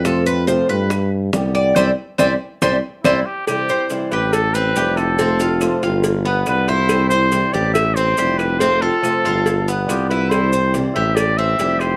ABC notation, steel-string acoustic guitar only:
X:1
M:4/4
L:1/8
Q:1/4=140
K:C
V:1 name="Steel-string acoustic guitar"
[C,F,A,CF] [A,CF] [C,F,A,CF] [A,CF] z2 [D,G,B,G] [G,B,G] | [E,G,C] z [E,G,C] z [E,G,C] z [E,G,C] z | [C,E,G,CE] [G,CE] [C,E,G,CE] [G,CE] z2 [E,G,CE] [G,CE] | [C,F,A,CF] [A,CF] [C,F,A,CF] [A,CF] z2 [G,B,F] [B,F] |
[C,E,G,CE] [G,CE] [C,E,G,CE] [G,CE] z2 [E,G,CE] [G,CE] | [C,F,A,CF] [A,CF] [C,F,A,CF] [A,CF] z2 [G,B,F] [B,F] | [C,E,G,CE] [G,CE] [C,E,G,CE] [G,CE] z2 [E,G,CE] [G,CE] |]